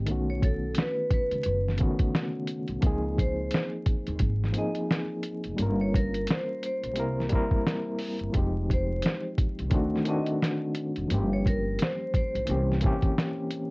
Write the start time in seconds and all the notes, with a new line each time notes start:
0.06 B1 D#3 A3 B3, closed hi-hat
0.10 C#4 F#4
0.30 C#5
0.42 A4, kick, closed hi-hat
0.75 snare, closed hi-hat
0.80 B4
1.11 B4, kick, closed hi-hat
1.31 C#2, closed hi-hat
1.43 F#1, closed hi-hat
1.69 snare
1.77 C#3 A3 B3, kick, closed hi-hat
1.81 D#3 C#4 F#4
1.99 kick, closed hi-hat
2.15 snare, closed hi-hat
2.47 closed hi-hat
2.68 B1, closed hi-hat
2.81 C#2 F3 A#3 C4, kick, closed hi-hat
2.85 D#4 G#4
3.18 C5, kick, closed hi-hat
3.51 snare, closed hi-hat
3.86 kick, closed hi-hat
4.07 D#2, closed hi-hat
4.19 G#1, kick, closed hi-hat
4.44 snare
4.52 F3 A#3 C4, closed hi-hat
4.56 D#4 G#4 D#5
4.75 closed hi-hat
4.91 snare, closed hi-hat
5.23 closed hi-hat
5.44 F1, closed hi-hat
5.57 G1 G3 A#3 C#4, closed hi-hat
5.61 F4 A#4
5.81 C#5
5.94 A#4, kick, closed hi-hat
6.14 closed hi-hat
6.27 snare, closed hi-hat
6.31 C5
6.63 C5, closed hi-hat
6.84 A#1, closed hi-hat
6.93 G3 A#3 C4, closed hi-hat
6.97 C2 E4 A#4
7.20 snare
7.29 G3 A#3 C4, kick, closed hi-hat
7.34 E4 A#4
7.51 kick
7.67 snare, closed hi-hat
7.99 open hi-hat
8.19 G1, closed hi-hat
8.32 F1 F3 G#3 C4, kick, closed hi-hat
8.37 D#4 G4
8.70 C5, kick, closed hi-hat
9.02 snare, closed hi-hat
9.38 kick, closed hi-hat
9.59 C2, closed hi-hat
9.70 D2 D#3 A3 C4, kick, closed hi-hat
9.74 D4 F#4
9.96 snare
10.04 D#3 A3 C4 D4, closed hi-hat
10.09 F#4 D#5
10.26 closed hi-hat
10.43 snare, closed hi-hat
10.75 closed hi-hat
10.96 E1, closed hi-hat
11.08 G1 F3 G3 A#3, closed hi-hat
11.12 C#4 G4
11.33 C#5
11.46 A#4, kick, closed hi-hat
11.79 C5, snare, closed hi-hat
12.14 C5, kick, closed hi-hat
12.35 A#1, closed hi-hat
12.45 E3 A#3 C4, closed hi-hat
12.49 C2 C#4 G4
12.72 snare
12.81 E3 A#3 C4, kick, closed hi-hat
12.85 C#4 G4
13.02 kick, closed hi-hat
13.18 snare, closed hi-hat
13.50 closed hi-hat